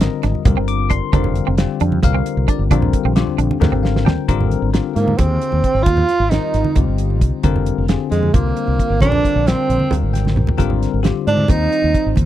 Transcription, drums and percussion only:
0.01 snare loud
0.01 closed hi-hat medium
0.01 low conga soft
0.23 snare soft
0.23 closed hi-hat medium
0.35 low conga soft
0.45 kick loud
0.45 closed hi-hat medium
0.45 low conga medium
0.68 closed hi-hat medium
0.80 low conga soft
0.90 kick medium
0.90 closed hi-hat medium
1.13 kick loud
1.13 closed hi-hat medium
1.13 high conga loud
1.24 low conga medium
1.35 closed hi-hat medium
1.58 snare loud
1.58 closed hi-hat medium
1.58 low conga soft
1.80 closed hi-hat medium
1.92 high conga medium
1.92 low conga soft
2.03 kick loud
2.03 closed hi-hat medium
2.03 low conga medium
2.26 closed hi-hat medium
2.37 low conga soft
2.48 kick medium
2.48 closed hi-hat medium
2.71 kick loud
2.71 closed hi-hat medium
2.71 high conga medium
2.71 low conga soft
2.82 low conga medium
2.93 kick medium
2.93 closed hi-hat medium
3.16 snare medium
3.16 closed hi-hat medium
3.28 low conga soft
3.39 closed hi-hat medium
3.51 high conga medium
3.51 low conga soft
3.62 snare medium
3.62 low conga medium
3.73 low conga soft
3.84 snare medium
3.84 low conga soft
3.96 snare medium
4.06 snare medium
4.06 low conga soft
4.18 low conga soft
4.29 kick loud
4.29 closed hi-hat medium
4.29 high conga medium
4.41 low conga medium
4.51 closed hi-hat medium
4.74 snare medium
4.74 closed hi-hat medium
4.74 low conga soft
4.96 closed hi-hat medium
5.08 high conga medium
5.08 low conga soft
5.19 kick loud
5.19 closed hi-hat medium
5.19 low conga medium
5.42 closed hi-hat medium
5.52 low conga soft
5.64 kick medium
5.64 closed hi-hat soft
5.86 kick loud
5.86 closed hi-hat medium
5.86 high conga loud
5.97 low conga medium
6.09 snare soft
6.09 closed hi-hat medium
6.31 snare medium
6.31 closed hi-hat medium
6.31 low conga soft
6.54 snare soft
6.54 closed hi-hat medium
6.64 high conga medium
6.64 low conga soft
6.75 kick loud
6.75 closed hi-hat medium
6.75 low conga medium
6.98 closed hi-hat medium
7.10 low conga soft
7.21 kick medium
7.21 closed hi-hat medium
7.43 kick medium
7.43 closed hi-hat medium
7.43 high conga medium
7.56 low conga medium
7.66 closed hi-hat medium
7.88 snare medium
7.88 closed hi-hat medium
8.12 snare soft
8.12 closed hi-hat medium
8.23 high conga medium
8.23 low conga soft
8.34 kick loud
8.34 closed hi-hat medium
8.34 low conga medium
8.57 closed hi-hat soft
8.67 low conga soft
8.79 kick medium
8.79 closed hi-hat medium
9.01 kick loud
9.01 closed hi-hat medium
9.01 high conga medium
9.01 low conga soft
9.12 low conga medium
9.25 kick medium
9.25 closed hi-hat soft
9.34 low conga soft
9.46 snare medium
9.46 closed hi-hat medium
9.46 low conga soft
9.70 closed hi-hat medium
9.80 high conga medium
9.80 low conga soft
9.91 closed hi-hat medium
9.91 low conga medium
10.14 snare soft
10.14 closed hi-hat medium
10.14 high conga medium
10.25 snare soft
10.25 high conga medium
10.36 mid tom medium
10.36 low conga medium
10.47 floor tom medium
10.47 low conga medium
10.58 kick loud
10.58 closed hi-hat medium
10.58 high conga medium
10.70 low conga medium
10.83 snare soft
10.83 closed hi-hat medium
11.04 snare medium
11.04 closed hi-hat medium
11.04 low conga soft
11.27 closed hi-hat medium
11.37 high conga medium
11.37 low conga soft
11.48 kick loud
11.48 closed hi-hat medium
11.48 low conga medium
11.72 closed hi-hat medium
11.82 low conga soft
11.94 kick medium
11.94 closed hi-hat medium
12.16 kick medium
12.16 closed hi-hat medium
12.16 high conga medium

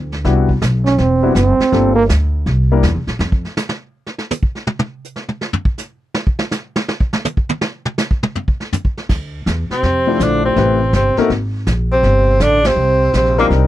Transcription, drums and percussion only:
0.12 snare soft
0.25 brush sweep soft
0.25 kick soft
0.25 snare soft
0.49 kick soft
0.62 kick soft
0.62 snare medium
0.62 hi-hat pedal medium
0.86 snare soft
0.98 brush sweep soft
0.98 kick soft
0.98 snare soft
1.35 kick soft
1.35 snare medium
1.35 hi-hat pedal medium
1.60 snare medium
1.72 brush sweep soft
1.72 kick soft
1.72 snare soft
2.09 kick soft
2.09 snare medium
2.09 hi-hat pedal medium
2.46 brush sweep soft
2.46 kick soft
2.46 snare soft
2.83 kick soft
2.83 snare medium
2.83 hi-hat pedal soft
3.07 snare soft
3.20 snare medium
3.32 kick medium
3.45 snare soft
3.57 snare loud
3.57 hi-hat pedal medium
3.69 snare loud
4.06 snare soft
4.18 snare medium
4.31 hi-hat pedal medium
4.31 high tom medium
4.43 kick medium
4.55 snare soft
4.67 mid tom loud
4.79 mid tom loud
5.04 hi-hat pedal medium
5.16 snare medium
5.28 mid tom soft
5.41 snare soft
5.53 floor tom loud
5.65 kick medium
5.78 snare soft
5.78 hi-hat pedal medium
6.14 snare medium
6.27 kick medium
6.39 snare medium
6.51 snare loud
6.51 hi-hat pedal medium
6.76 snare loud
6.88 snare loud
7.00 kick medium
7.13 snare loud
7.25 hi-hat pedal medium
7.25 high tom medium
7.37 kick medium
7.49 high tom loud
7.61 snare loud
7.85 mid tom medium
7.98 snare loud
7.98 hi-hat pedal medium
8.11 kick medium
8.23 mid tom loud
8.35 floor tom loud
8.48 kick medium
8.60 snare soft
8.73 floor tom loud
8.73 hi-hat pedal medium
8.85 kick medium
8.97 snare medium
9.09 brush sweep soft
9.09 kick medium
9.09 snare soft
9.09 crash medium
9.46 kick soft
9.46 snare medium
9.46 hi-hat pedal medium
9.70 snare soft
9.83 brush sweep medium
9.83 kick soft
9.83 snare soft
10.20 kick soft
10.20 snare soft
10.20 hi-hat pedal medium
10.56 brush sweep soft
10.56 kick soft
10.56 snare soft
10.93 kick soft
10.93 snare medium
10.93 hi-hat pedal medium
11.17 snare soft
11.30 brush sweep soft
11.30 kick soft
11.30 snare soft
11.67 kick soft
11.67 snare medium
11.67 hi-hat pedal soft
12.03 brush sweep soft
12.03 kick soft
12.03 snare soft
12.40 kick soft
12.40 snare medium
12.40 hi-hat pedal medium
12.64 snare medium
12.64 ride medium
12.77 brush sweep soft
13.13 kick soft
13.13 snare medium
13.13 hi-hat pedal soft
13.26 snare soft
13.38 snare soft
13.51 brush sweep soft
13.51 kick soft
13.51 snare soft

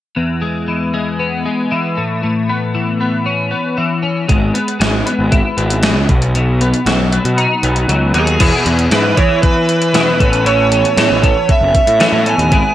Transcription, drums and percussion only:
4.29 kick medium
4.29 closed hi-hat medium
4.55 closed hi-hat medium
4.68 closed hi-hat medium
4.81 snare loud
4.81 closed hi-hat soft
5.07 closed hi-hat medium
5.32 kick loud
5.32 closed hi-hat medium
5.58 closed hi-hat medium
5.70 closed hi-hat medium
5.83 snare loud
5.83 closed hi-hat medium
6.09 kick medium
6.09 closed hi-hat soft
6.22 closed hi-hat soft
6.35 closed hi-hat medium
6.61 closed hi-hat medium
6.74 closed hi-hat soft
6.86 snare medium
6.86 closed hi-hat soft
7.12 closed hi-hat medium
7.25 closed hi-hat medium
7.38 closed hi-hat soft
7.63 closed hi-hat medium
7.76 closed hi-hat soft
7.89 closed hi-hat medium
8.14 closed hi-hat soft
8.27 closed hi-hat soft
8.40 kick medium
8.40 closed hi-hat medium
8.40 crash medium
8.66 closed hi-hat medium
8.79 closed hi-hat medium
8.91 snare medium
8.91 closed hi-hat medium
9.17 kick medium
9.17 closed hi-hat medium
9.43 kick medium
9.43 closed hi-hat soft
9.69 closed hi-hat medium
9.82 closed hi-hat medium
9.94 snare medium
9.94 closed hi-hat medium
10.20 kick medium
10.20 closed hi-hat medium
10.33 closed hi-hat medium
10.46 closed hi-hat medium
10.72 closed hi-hat medium
10.85 closed hi-hat medium
10.97 snare loud
10.97 closed hi-hat medium
11.23 kick medium
11.23 closed hi-hat medium
11.49 kick loud
11.49 closed hi-hat medium
11.75 kick medium
11.75 closed hi-hat medium
11.87 closed hi-hat medium
12.00 snare loud
12.00 closed hi-hat medium
12.26 closed hi-hat medium
12.39 closed hi-hat medium
12.52 kick medium
12.52 closed hi-hat medium

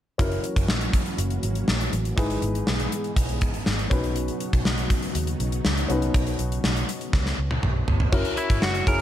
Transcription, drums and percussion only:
0.19 kick loud
0.19 closed hi-hat medium
0.32 closed hi-hat soft
0.44 closed hi-hat medium
0.56 kick medium
0.56 closed hi-hat soft
0.68 snare medium
0.81 closed hi-hat soft
0.93 kick medium
0.93 closed hi-hat medium
1.06 closed hi-hat soft
1.18 closed hi-hat medium
1.30 closed hi-hat soft
1.43 closed hi-hat medium
1.55 closed hi-hat soft
1.68 snare medium
1.81 closed hi-hat soft
1.93 closed hi-hat medium
2.05 closed hi-hat soft
2.18 kick loud
2.18 closed hi-hat medium
2.30 closed hi-hat soft
2.42 closed hi-hat medium
2.55 closed hi-hat soft
2.67 snare loud
2.80 closed hi-hat soft
2.92 closed hi-hat medium
3.04 closed hi-hat soft
3.16 kick medium
3.16 closed hi-hat medium
3.29 closed hi-hat soft
3.41 kick medium
3.41 closed hi-hat medium
3.54 closed hi-hat soft
3.66 snare medium
3.79 closed hi-hat soft
3.91 kick medium
3.91 closed hi-hat medium
4.04 closed hi-hat soft
4.16 closed hi-hat medium
4.28 closed hi-hat soft
4.40 closed hi-hat medium
4.53 kick medium
4.53 closed hi-hat soft
4.65 snare medium
4.78 closed hi-hat soft
4.90 kick medium
4.90 closed hi-hat medium
5.02 closed hi-hat soft
5.15 closed hi-hat medium
5.27 closed hi-hat soft
5.40 closed hi-hat medium
5.52 closed hi-hat soft
5.65 snare medium
5.77 closed hi-hat soft
5.90 closed hi-hat medium
6.02 closed hi-hat soft
6.14 kick medium
6.14 closed hi-hat medium
6.27 closed hi-hat soft
6.39 closed hi-hat medium
6.52 closed hi-hat medium
6.64 snare loud
6.76 closed hi-hat soft
6.89 closed hi-hat medium
7.01 closed hi-hat soft
7.13 kick medium
7.13 snare soft
7.26 snare soft
7.51 high tom medium
7.63 mid tom medium
7.88 floor tom medium
8.00 floor tom medium
8.12 kick loud
8.12 crash medium
8.25 closed hi-hat soft
8.37 closed hi-hat medium
8.50 kick medium
8.50 closed hi-hat medium
8.62 snare loud
8.75 closed hi-hat soft
8.87 kick medium
8.87 closed hi-hat medium

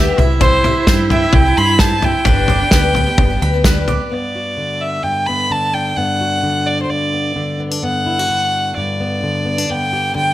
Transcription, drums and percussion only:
0.18 floor tom medium
0.41 kick loud
0.41 floor tom loud
0.64 floor tom medium
0.87 kick loud
0.87 snare loud
0.87 tambourine medium
1.10 floor tom medium
1.33 kick loud
1.33 floor tom loud
1.79 kick loud
1.79 snare loud
1.79 tambourine medium
2.02 floor tom medium
2.25 kick loud
2.25 floor tom loud
2.48 floor tom medium
2.71 kick loud
2.71 snare loud
2.71 tambourine medium
2.95 floor tom medium
3.18 kick loud
3.18 floor tom loud
3.64 kick loud
3.64 snare loud
3.64 tambourine medium
3.88 floor tom medium

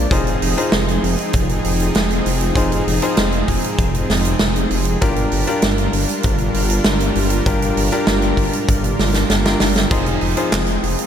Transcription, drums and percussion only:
0.11 kick loud
0.11 closed hi-hat medium
0.27 closed hi-hat soft
0.42 open hi-hat medium
0.58 closed hi-hat medium
0.72 snare loud
0.72 closed hi-hat medium
0.88 closed hi-hat soft
1.04 open hi-hat medium
1.19 closed hi-hat medium
1.33 kick loud
1.33 closed hi-hat medium
1.49 closed hi-hat soft
1.64 open hi-hat medium
1.80 closed hi-hat medium
1.95 snare loud
1.95 closed hi-hat medium
2.11 closed hi-hat soft
2.26 open hi-hat medium
2.41 closed hi-hat medium
2.55 kick loud
2.55 closed hi-hat medium
2.72 closed hi-hat soft
2.88 open hi-hat medium
3.02 closed hi-hat medium
3.17 snare loud
3.17 closed hi-hat medium
3.32 closed hi-hat soft
3.48 kick medium
3.48 open hi-hat medium
3.64 closed hi-hat medium
3.79 kick loud
3.79 closed hi-hat medium
3.94 closed hi-hat soft
4.10 snare medium
4.10 open hi-hat medium
4.25 closed hi-hat medium
4.39 snare loud
4.39 closed hi-hat medium
4.56 closed hi-hat soft
4.71 open hi-hat medium
4.85 closed hi-hat medium
5.01 kick loud
5.01 closed hi-hat medium
5.16 closed hi-hat soft
5.32 open hi-hat medium
5.47 closed hi-hat medium
5.62 snare loud
5.62 closed hi-hat medium
5.78 closed hi-hat soft
5.93 open hi-hat medium
6.09 closed hi-hat medium
6.23 kick loud
6.23 closed hi-hat medium
6.38 closed hi-hat soft
6.54 open hi-hat medium
6.70 closed hi-hat medium
6.84 snare loud
6.84 closed hi-hat medium
7.00 closed hi-hat soft
7.15 open hi-hat medium
7.30 closed hi-hat medium
7.46 kick loud
7.46 closed hi-hat medium
7.62 closed hi-hat soft
7.77 open hi-hat medium
7.92 closed hi-hat medium
8.07 snare loud
8.07 closed hi-hat medium
8.22 closed hi-hat soft
8.37 kick medium
8.37 open hi-hat medium
8.53 closed hi-hat medium
8.69 kick loud
8.69 closed hi-hat medium
8.84 closed hi-hat soft
8.99 snare medium
8.99 open hi-hat medium
9.14 snare medium
9.14 closed hi-hat medium
9.30 snare medium
9.30 closed hi-hat medium
9.45 snare medium
9.45 closed hi-hat soft
9.60 snare medium
9.60 open hi-hat medium
9.76 snare medium
9.76 closed hi-hat medium
9.91 kick loud
9.91 closed hi-hat medium
9.91 crash medium
10.06 closed hi-hat soft
10.21 open hi-hat medium
10.37 closed hi-hat medium
10.52 snare loud
10.52 clap medium
10.52 closed hi-hat medium
10.67 closed hi-hat soft
10.84 open hi-hat medium
10.99 closed hi-hat medium

